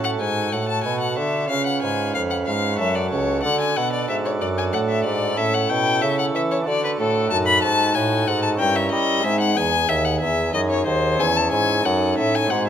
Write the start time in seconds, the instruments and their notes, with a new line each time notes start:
Already playing: pipe organ A2 C#4 F#4 A4, bassoon A2
0.04 violin F#5
0.20 bassoon G#2, pipe organ G#2, violin G#5
0.52 bassoon A2, pipe organ A2, violin F#5
0.69 violin A5
0.84 bassoon B2, pipe organ B2, violin G#5
1.01 violin F#5
1.18 bassoon D3, pipe organ D3, violin E5
1.46 pipe organ C#4 F4 B4
1.50 bassoon C#3, pipe organ C#3, violin F5
1.67 violin F#5
1.82 bassoon G#2, pipe organ G#2, violin G#5
2.15 bassoon F2, pipe organ F2, violin F5
2.30 violin F#5
2.46 pipe organ G#2, bassoon G#2, violin F5
2.75 pipe organ C#4 F#4 A4
2.79 pipe organ F#2, bassoon F#2, violin E5
2.95 violin D5
3.11 pipe organ C#2, bassoon C#2, violin C#5
3.40 pipe organ D4 F#4 A4, violin F#5
3.45 pipe organ D3, bassoon D3
3.61 violin G#5
3.77 pipe organ B2, bassoon B2, violin F#5
3.93 violin D5
4.09 pipe organ G#2, bassoon G#2, violin E5
4.25 violin C#5
4.41 pipe organ F#2, bassoon F#2, violin D5
4.58 violin G#5
4.73 bassoon A2, pipe organ A2, violin F#5
4.89 violin E5
5.05 bassoon G#2, pipe organ G#2, violin D5
5.33 pipe organ C#4 E4 A4
5.37 pipe organ A2, bassoon A2, violin E5
5.54 violin F#5
5.70 pipe organ B2, bassoon B2, violin G5
6.02 pipe organ C#3, bassoon C#3, violin E5
6.19 violin F#5
6.34 pipe organ E3, bassoon E3, violin E5
6.51 violin C#5
6.62 pipe organ D4 F#4 A4
6.67 pipe organ D3, bassoon D3, violin D5
6.84 violin B4
6.99 pipe organ A2, bassoon A2, violin A4
7.27 pipe organ D#4 F#4 A4, violin A5
7.31 pipe organ F#2, bassoon F#2
7.47 violin B5
7.63 pipe organ G#2, bassoon G#2, violin A5
7.95 bassoon A2, pipe organ A2, violin G#5
8.27 pipe organ G#2, bassoon G#2, violin F#5
8.43 violin A5
8.56 pipe organ C#4 E4 A#4, violin G5
8.60 bassoon G2, pipe organ G2
8.76 violin E5
8.92 bassoon G3, pipe organ G3, violin D#5
9.19 pipe organ G#3 C4 D#4
9.24 bassoon G#2, pipe organ G#2 G#4, violin E5
9.41 violin F#5
9.57 bassoon E2, pipe organ E2, violin G#5
9.89 pipe organ D#2, bassoon D#2, violin E5
10.05 violin F#5
10.21 pipe organ E2, bassoon E2, violin E5
10.50 bassoon F#2, pipe organ D#4 G#4
10.54 pipe organ F#2, violin D#5
10.70 violin C#5
10.86 bassoon D#2, pipe organ D#2, violin C5
11.15 pipe organ C#4 E4 G#4
11.19 bassoon E2, pipe organ E2, violin G#5
11.36 violin A5
11.51 pipe organ G#2, bassoon G#2, violin G#5
11.80 pipe organ C#4 D#4 A4
11.84 pipe organ F#2, bassoon F#2, violin F#5
12.17 pipe organ A2, bassoon A2, violin E5
12.35 violin G#5
12.44 pipe organ G#3 C4 F#4
12.49 pipe organ G#2 G#4, bassoon G#2, violin F#5